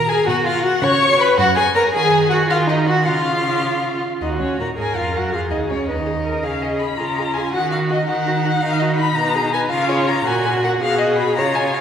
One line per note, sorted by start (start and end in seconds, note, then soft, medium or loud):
0.00 0.16 A#2 medium
0.00 0.10 A#4 medium
0.00 0.10 A#5 medium
0.09 0.27 G#4 medium
0.09 0.28 G#4 medium
0.09 0.28 G#5 medium
0.27 0.72 B2 medium
0.27 0.47 F#4 medium
0.27 0.36 F#5 medium
0.45 0.64 F4 medium
0.45 0.65 F4 medium
0.45 0.65 F5 medium
0.63 0.85 F#4 medium
0.63 0.72 F#4 medium
0.63 0.85 F#5 medium
0.82 1.27 C#3 medium
0.82 1.22 C#5 medium
0.82 1.19 C#5 medium
0.82 1.22 C#6 loud
1.19 1.38 B4 medium
1.19 1.38 B5 medium
1.38 1.82 F#2 medium
1.38 1.46 F#4 medium
1.38 1.56 F#5 loud
1.55 1.63 G#4 medium
1.55 1.64 G#4 medium
1.55 1.74 G#5 medium
1.75 1.82 A#4 medium
1.75 1.93 A#4 medium
1.75 1.83 A#5 medium
1.94 2.46 D#3 medium
1.94 2.29 G#4 medium
1.94 2.33 G#4 medium
1.94 2.29 G#5 loud
2.30 2.48 F#4 medium
2.30 2.52 F#4 medium
2.30 2.38 F#5 medium
2.49 3.09 D#3 medium
2.49 2.68 F4 medium
2.49 2.58 F5 medium
2.67 2.88 D#4 medium
2.67 2.77 D#5 medium
2.87 3.06 F#4 medium
2.87 3.08 F#4 medium
2.87 3.08 F#5 medium
3.06 4.03 C#3 medium
3.06 4.01 F4 medium
3.06 4.02 F4 medium
3.06 4.03 F5 medium
4.21 4.42 D#2 medium
4.21 4.40 D#4 soft
4.21 4.74 F#4 soft
4.21 4.29 D#5 medium
4.40 4.59 C#2 soft
4.40 4.59 C#4 soft
4.40 4.59 C#5 soft
4.59 4.67 A#2 soft
4.59 4.67 A#4 soft
4.59 4.67 A#5 medium
4.77 4.85 G#2 soft
4.77 4.96 G#4 medium
4.77 5.34 A#4 soft
4.77 4.97 G#5 medium
4.96 5.17 F2 soft
4.96 5.18 F4 soft
4.96 5.18 F5 medium
5.15 5.34 F#2 soft
5.15 5.36 F#4 soft
5.15 5.32 F#5 soft
5.32 5.50 F2 medium
5.32 5.51 F4 medium
5.32 5.88 G#4 soft
5.32 5.40 F5 medium
5.51 5.58 D#2 soft
5.51 5.72 D#4 soft
5.51 5.58 D#5 soft
5.70 5.78 C#2 soft
5.70 5.92 C#4 soft
5.70 5.87 C#5 soft
5.87 6.43 D#2 soft
5.87 6.43 D#4 soft
5.87 5.96 B4 soft
5.87 6.45 D#5 medium
6.06 6.14 G#4 soft
6.25 6.45 A#4 soft
6.43 6.92 C#3 soft
6.43 6.51 G#4 soft
6.43 6.98 G#4 soft
6.43 6.63 F5 medium
6.62 6.69 G#4 soft
6.62 6.81 D#5 medium
6.80 6.87 G#4 soft
6.80 6.98 B5 medium
6.97 7.47 C#3 medium
6.97 7.54 F4 medium
6.97 7.06 G#4 soft
6.97 7.35 A#5 medium
7.18 7.25 G#4 soft
7.34 7.44 G#4 soft
7.34 7.52 G#5 medium
7.53 8.02 D#3 medium
7.53 8.08 F#4 medium
7.53 7.61 F#4 soft
7.53 7.71 F#5 medium
7.72 7.79 F#4 soft
7.72 7.79 F5 medium
7.90 7.97 F#4 soft
7.90 8.07 D#5 medium
8.07 8.56 D#3 medium
8.07 9.68 D#4 medium
8.07 8.16 F#4 soft
8.07 8.62 F#5 medium
8.27 8.34 F#4 soft
8.45 8.52 F#4 soft
8.61 9.13 D#3 medium
8.61 8.83 D#4 medium
8.61 8.81 F5 loud
8.80 9.01 F#4 medium
8.80 8.96 D#5 medium
8.97 9.17 D#4 medium
8.97 9.17 B5 medium
9.15 9.70 B2 medium
9.15 9.52 A#5 medium
9.19 9.36 B4 medium
9.35 9.55 G#4 medium
9.53 9.71 B4 medium
9.53 9.61 G#5 medium
9.70 10.25 C#3 medium
9.70 10.25 F4 medium
9.70 9.90 F4 medium
9.70 9.90 F5 medium
9.89 10.10 G#4 medium
9.89 10.10 C#5 medium
10.08 10.26 F4 medium
10.08 10.28 A#5 medium
10.25 10.80 A#2 medium
10.25 10.83 F#4 medium
10.25 10.47 A#4 medium
10.25 10.63 G#5 medium
10.45 10.65 F#4 medium
10.63 10.81 A#4 medium
10.63 10.71 F#5 medium
10.81 11.40 B2 medium
10.81 11.34 F#4 medium
10.81 11.40 G#4 medium
10.81 11.00 F5 loud
10.99 11.18 D#5 medium
11.16 11.35 B5 medium
11.36 11.81 C#3 medium
11.36 11.81 F4 medium
11.36 11.81 C#5 medium
11.36 11.57 A#5 medium
11.55 11.76 G#5 medium
11.74 11.81 F5 medium